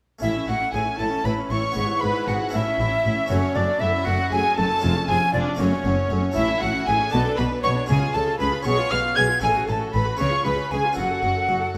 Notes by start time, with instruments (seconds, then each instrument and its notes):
0.19 double bass section A1, cello section A2, harpsichord A3 C#4 E4, violin section E4, flute E5
0.23 harpsichord A2, viola section E4, violin section E5
0.35 viola section C#4
0.47 double bass section A1, harpsichord A2, cello section A2, viola section E4, violin section F#4 F#5, flute F#5
0.62 viola section C#4
0.73 double bass section A1, cello section A2, harpsichord A2, viola section E4, violin section G#4 G#5, flute G#5
0.87 viola section C#4
0.99 double bass section A1, harpsichord A2, cello section A2, viola section E4, violin section A4 A5, flute A5
1.12 viola section C#4
1.25 double bass section A1, cello section A2, harpsichord A2, viola section E4, violin section B4 B5, flute B5
1.39 viola section C#4
1.50 double bass section A1, cello section A2, harpsichord A2, viola section E4, violin section C#5 C#6, flute C#6
1.64 viola section C#4
1.72 harpsichord B3 E4
1.76 double bass section G#1, cello section G#2, harpsichord G#2, viola section G#4
1.89 viola section E4
2.01 double bass section G#1, cello section G#2, harpsichord G#2, viola section G#4, violin section B4 B5, flute B5
2.15 viola section E4
2.27 double bass section G#1, cello section G#2, harpsichord G#2, violin section F#4 F#5, viola section G#4, flute F#5
2.40 viola section E4
2.49 harpsichord A3 C#4 E4, viola section E4
2.53 double bass section A1, harpsichord A2, cello section A2, violin section E4 E5, flute E5
2.66 viola section C#4
2.78 double bass section A1, cello section A2, harpsichord A2, viola section E4
2.91 viola section C#4
3.04 double bass section A1, cello section A2, harpsichord A2, viola section E4
3.17 viola section C#4
3.26 double bass section F#1, harpsichord A3 C#4 F#4, viola section A3, flute C#5, violin section C#5
3.30 cello section F#2, harpsichord F#2, violin section C#4
3.42 viola section C#4
3.55 double bass section F#1, harpsichord F#2, cello section F#2, viola section A3, violin section D4 D5, flute D5
3.70 viola section C#4
3.80 double bass section F#1, cello section F#2, harpsichord F#2, viola section A3, violin section E4 E5, flute E5
3.94 viola section C#4
4.05 double bass section F#1, cello section F#2, harpsichord F#2, viola section A3, violin section F#4 F#5, flute F#5
4.21 viola section C#4
4.31 double bass section F#1, harpsichord F#2, cello section F#2, viola section A3, violin section G#4 G#5, flute G#5
4.46 viola section C#4
4.57 double bass section F#1, harpsichord F#2, cello section F#2, viola section A3, violin section A4 A5, flute A5
4.71 viola section C#4
4.79 harpsichord G#3 C#4 G#4
4.83 double bass section F1, harpsichord F2, cello section F2, viola section F4
4.97 viola section C#4
5.08 double bass section F1, harpsichord F2, cello section F2, viola section F4, violin section G#4 G#5, flute G#5
5.22 viola section C#4
5.34 double bass section F1, cello section F2, harpsichord F2, violin section D4 D5, viola section F4, flute D5
5.48 viola section C#4
5.55 harpsichord A3 C#4 F#4
5.59 double bass section F#1, harpsichord F#2, cello section F#2, viola section A3, violin section C#4 C#5, flute C#5
5.73 viola section C#4
5.85 double bass section F#1, harpsichord F#2, cello section F#2, viola section A3
5.97 viola section C#4
6.10 double bass section F#1, harpsichord F#2, cello section F#2, viola section A3
6.23 viola section C#4
6.32 harpsichord A3 C#4 E4
6.36 double bass section A1, harpsichord A2, cello section A2, violin section E4 E5, viola section E4, flute E5
6.49 viola section C#4
6.61 double bass section A1, cello section A2, harpsichord A2, viola section E4, violin section F#4 F#5, flute F#5
6.75 viola section C#4
6.86 double bass section A1, harpsichord A2, cello section A2, viola section E4, violin section G#4 G#5, flute G#5
7.00 viola section C#4
7.10 double bass section B1, harpsichord B2 D4, cello section B2, viola section B3, violin section A4 A5, flute A5
7.26 viola section D4
7.37 double bass section B1, harpsichord B2, cello section B2, viola section B3, violin section B4 B5, flute B5
7.52 viola section D4
7.63 double bass section B1, harpsichord B2, cello section B2, viola section B3, violin section C#5 C#6, flute C#6
7.77 viola section D4
7.86 double bass section C#2, harpsichord C#3 C#4 G#4, cello section C#3, viola section G#4, violin section G#4 G#5, flute G#5
8.02 viola section F4
8.14 double bass section C#2, harpsichord C#3, cello section C#3, viola section G#4, violin section A4 A5, flute A5
8.28 viola section F4
8.39 double bass section C#2, harpsichord C#3, cello section C#3, viola section G#4, violin section B4 B5, flute B5
8.53 viola section F4
8.63 double bass section B1, harpsichord B2 C#4 G#4, cello section B2, viola section G#4, violin section C#5 C#6, flute C#6
8.78 viola section F4
8.90 double bass section B1, harpsichord B2, cello section B2, viola section G#4, violin section F5 F6, flute F6
9.03 viola section F4
9.16 double bass section B1, harpsichord B2, cello section B2, viola section G#4, violin section G#5 G#6, flute G#6
9.29 viola section F4
9.39 double bass section A1, harpsichord A2 C#4 A4, cello section A2, violin section G#4 G#5, viola section A4, flute G#5
9.55 viola section F#4
9.68 double bass section A1, harpsichord A2, cello section A2, viola section A4, violin section A4 A5, flute A5
9.80 viola section F#4
9.93 double bass section A1, harpsichord A2, cello section A2, viola section A4, violin section B4 B5, flute B5
10.05 viola section F#4
10.17 double bass section C#2, harpsichord C#3 C#4 B4, cello section C#3, viola section G#4, violin section C#5 C#6, flute C#6
10.32 viola section F4
10.45 double bass section C#2, harpsichord C#3, cello section C#3, viola section G#4, violin section B4 B5, flute B5
10.58 viola section F4
10.71 double bass section C#2, harpsichord C#3, cello section C#3, viola section G#4, violin section G#4 G#5, flute G#5
10.84 viola section F4
10.93 harpsichord C#4 A4
10.97 double bass section F#1, harpsichord F#2, cello section F#2, viola section F#4, violin section F#4 F#5, flute F#5
11.11 viola section A4
11.23 double bass section F#1, harpsichord F#2, cello section F#2, viola section F#4
11.37 viola section A4
11.49 double bass section F#1, cello section F#2, harpsichord F#2, viola section F#4
11.63 viola section A4